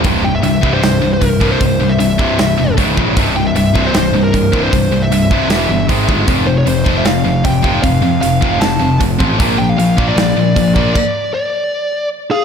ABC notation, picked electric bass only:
X:1
M:4/4
L:1/8
Q:1/4=154
K:none
V:1 name="Picked electric bass" clef=bass
C,,,2 C,,,2 C,,, C,,, C,,,2 | C,,, C,, C,,, C,,, C,,, E,,, _D,,, _B,,, | C,,,2 C,,,2 C,,, C,,, C,,,2 | C,,, C,, C,,, C,,, E,,, G,,, _A,,, G,,, |
F,,,2 F,,,2 F,,, F,,, F,,,2 | F,,, F,, F,,, F,,, F,,, F,,, F,,, A,,, | _B,,,2 B,,,2 B,,, B,,, B,,,2 | z8 |]